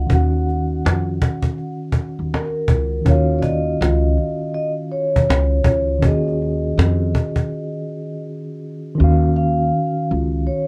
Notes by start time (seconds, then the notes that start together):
Already playing: F#5
0.06 D#2 D#3 C#4, cajon bass
0.12 F#4 F#5
0.49 cajon slap
0.85 F2, cajon slap
1.22 cajon bass
1.43 cajon bass
1.58 cajon slap
1.92 cajon bass
2.19 D#2
2.33 A#4, cajon slap
2.68 C#2, cajon bass
3.02 D#3 C#4
3.06 D#2 F4 C#5, cajon bass
3.11 F#4 F5
3.39 D5 D#5, cajon bass
3.81 C#2, cajon slap
4.18 cajon slap
4.54 D#5, cajon slap
4.92 C#5, cajon slap
5.16 D#2, cajon bass
5.29 C#2, cajon slap
5.64 C#2 C#5, cajon bass
5.99 D#3 C#4, cajon bass
6.03 D#2 F#4 D#5
6.07 G#4
6.28 cajon slap
6.42 cajon slap
6.77 F2, cajon slap
7.15 cajon bass
7.36 cajon bass
8.95 D#3 C#4
9.00 D#2 F#4
9.04 F5
9.36 F5
10.11 C#2
10.47 C#5